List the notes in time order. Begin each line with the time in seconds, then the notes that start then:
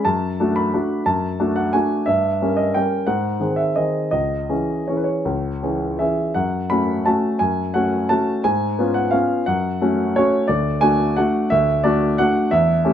0.05 F#2 A5
0.40 A3 D4 F#4
0.56 B5
0.73 A3 D4 F#4
1.06 F#2 A5
1.40 A3 D4 F#4
1.56 F#5
1.73 A3 D4 F#4 G#5
2.06 G2 E5
2.42 G3 C#4 A#4
2.57 D#5
2.74 G3 C#4 A#4 G5
3.07 G#2 F#5
3.40 D#3 C4 G#4
3.56 E5
3.76 D#3 C4 G#4 D#5
4.11 C#2 D#5
4.49 E3 C#4 G#4
4.88 E3 C#4 G#4 C#5
4.97 B4
5.04 C#5
5.25 C#2
5.63 E3 C#4 G#4
5.99 E3 C#4 G#4 E5
6.34 F#2 F#5
6.70 A3 C#4 F#4 B5
7.06 A3 C#4 F#4 A5
7.39 F#2 G#5
7.74 A3 C#4 F#4 F#5
8.09 A3 C#4 F#4 A5
8.44 G#2 G#5
8.79 B3 C#4 F4
8.94 F#5
9.11 B3 C#4 F4 F5
9.46 F#2 F#5
9.81 A3 C#4 F#4
10.16 A3 C#4 F#4 C#5
10.48 D2 D5
10.81 A3 D4 F#4 G#5
11.16 A3 D4 F#4 F#5
11.50 D2 E5
11.84 A3 D4 F#4 D5
12.18 A3 D4 F#4 F#5
12.51 E2 E5
12.85 A3 C#4 G4